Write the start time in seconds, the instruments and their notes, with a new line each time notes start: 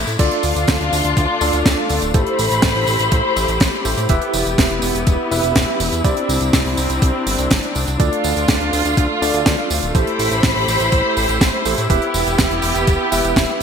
Already playing: string section A3 C4 E4
0.07 analog synth bass A2, closed hi-hat, tambourine
0.19 analog synth bass D2, string section A3 D4 F4, tine electric piano D4 F4 A4 D5, kick, closed hi-hat, crash, tambourine
0.31 closed hi-hat
0.43 analog synth bass D2, open hi-hat, tambourine
0.56 analog synth bass D2, closed hi-hat, tambourine
0.68 analog synth bass D2, kick, snare, closed hi-hat, tambourine
0.80 analog synth bass D2, closed hi-hat
0.92 analog synth bass D2, open hi-hat, tambourine
1.04 analog synth bass D2, closed hi-hat, tambourine
1.17 analog synth bass D2, kick, closed hi-hat, tambourine
1.41 analog synth bass D2, tine electric piano D4 F4 A4 D5, open hi-hat, tambourine
1.53 analog synth bass D2, closed hi-hat, tambourine
1.65 analog synth bass D2, kick, snare, closed hi-hat, tambourine
1.89 analog synth bass D2, open hi-hat, tambourine
2.02 analog synth bass D1, closed hi-hat, tambourine
2.14 analog synth bass A1, tine electric piano E4 G4 A4 C5, string section E4 G4 C5 B5, kick, closed hi-hat, tambourine
2.27 closed hi-hat
2.39 analog synth bass A1, open hi-hat, tambourine
2.51 analog synth bass A1, closed hi-hat, tambourine
2.62 analog synth bass A1, kick, snare, closed hi-hat
2.75 analog synth bass A1, open hi-hat
2.87 analog synth bass A1, open hi-hat, tambourine
2.99 analog synth bass A1, closed hi-hat, tambourine
3.12 analog synth bass A1, kick, closed hi-hat, tambourine
3.36 analog synth bass A1, open hi-hat, tambourine
3.48 analog synth bass A1, closed hi-hat, tambourine
3.60 analog synth bass A1, kick, snare, closed hi-hat, tambourine
3.85 analog synth bass A1, tine electric piano E4 G4 A4 C5, open hi-hat, tambourine
3.97 analog synth bass A2, closed hi-hat, tambourine
4.09 analog synth bass E1, string section B3 E4, tine electric piano E4 G4 B4 E5, kick, closed hi-hat, tambourine
4.22 closed hi-hat
4.33 analog synth bass E1, open hi-hat, tambourine
4.46 analog synth bass E1, closed hi-hat, tambourine
4.58 analog synth bass E1, kick, snare, closed hi-hat, tambourine
4.70 analog synth bass E1, closed hi-hat
4.82 analog synth bass E1, open hi-hat, tambourine
4.95 analog synth bass E1, closed hi-hat, tambourine
5.07 analog synth bass E1, kick, closed hi-hat, tambourine
5.31 analog synth bass E1, tine electric piano E4 G4 B4 E5, open hi-hat, tambourine
5.43 analog synth bass E1, closed hi-hat, tambourine
5.56 analog synth bass E1, kick, snare, closed hi-hat, tambourine
5.80 analog synth bass E1, open hi-hat, tambourine
5.92 analog synth bass E2, closed hi-hat, tambourine
6.04 analog synth bass C2, string section C4 D4, tine electric piano E4 G4 C5 D5, kick, closed hi-hat, tambourine
6.17 closed hi-hat
6.29 analog synth bass C2, open hi-hat, tambourine
6.41 analog synth bass C2, closed hi-hat, tambourine
6.53 analog synth bass C2, kick, snare, closed hi-hat, tambourine
6.66 analog synth bass C2, open hi-hat
6.77 analog synth bass C2, open hi-hat, tambourine
6.90 analog synth bass C2, closed hi-hat, tambourine
7.02 analog synth bass C2, kick, closed hi-hat, tambourine
7.27 analog synth bass G1, open hi-hat, tambourine
7.38 analog synth bass C2, closed hi-hat, tambourine
7.51 analog synth bass G1, kick, snare, closed hi-hat, tambourine
7.63 closed hi-hat
7.75 analog synth bass C2, open hi-hat, tambourine
7.87 analog synth bass C2, closed hi-hat, tambourine
8.00 analog synth bass D2, string section A3 F4, tine electric piano D4 F4 A4 D5, kick, closed hi-hat, tambourine
8.13 closed hi-hat
8.24 analog synth bass D2, open hi-hat, tambourine
8.36 analog synth bass D2, closed hi-hat, tambourine
8.48 analog synth bass D2, kick, snare, closed hi-hat, tambourine
8.61 analog synth bass D2, closed hi-hat
8.73 analog synth bass D2, open hi-hat, tambourine
8.85 analog synth bass D2, closed hi-hat, tambourine
8.97 analog synth bass D2, kick, closed hi-hat, tambourine
9.22 analog synth bass D2, tine electric piano D4 F4 A4 D5, open hi-hat, tambourine
9.34 analog synth bass D2, closed hi-hat, tambourine
9.46 analog synth bass D2, kick, snare, closed hi-hat, tambourine
9.70 analog synth bass D2, open hi-hat, tambourine
9.82 analog synth bass D1, closed hi-hat, tambourine
9.95 analog synth bass A1, tine electric piano E4 G4 A4 C5, string section E4 G4 C5 B5, kick, closed hi-hat, tambourine
10.07 closed hi-hat
10.19 analog synth bass A1, open hi-hat, tambourine
10.31 analog synth bass A1, closed hi-hat, tambourine
10.43 analog synth bass A1, kick, snare, closed hi-hat
10.56 analog synth bass A1, open hi-hat
10.68 analog synth bass A1, open hi-hat, tambourine
10.80 analog synth bass A1, closed hi-hat, tambourine
10.92 analog synth bass A1, kick, closed hi-hat, tambourine
11.17 analog synth bass A1, open hi-hat, tambourine
11.29 analog synth bass A1, closed hi-hat, tambourine
11.41 analog synth bass A1, kick, snare, closed hi-hat, tambourine
11.65 analog synth bass A1, tine electric piano E4 G4 A4 C5, open hi-hat, tambourine
11.78 analog synth bass A2, closed hi-hat, tambourine
11.90 analog synth bass E1, string section B3 G4, tine electric piano E4 G4 B4 E5, kick, closed hi-hat, tambourine
12.02 closed hi-hat
12.14 analog synth bass E1, open hi-hat, tambourine
12.27 analog synth bass E1, closed hi-hat, tambourine
12.38 analog synth bass E1, kick, snare, closed hi-hat
12.51 analog synth bass E1, closed hi-hat
12.62 analog synth bass E1, open hi-hat, tambourine
12.75 analog synth bass E1, closed hi-hat, tambourine
12.87 analog synth bass E1, kick, closed hi-hat, tambourine
13.12 analog synth bass E1, tine electric piano E4 G4 B4 E5, open hi-hat, tambourine
13.24 analog synth bass E1, closed hi-hat, tambourine
13.36 analog synth bass E1, kick, snare, closed hi-hat, tambourine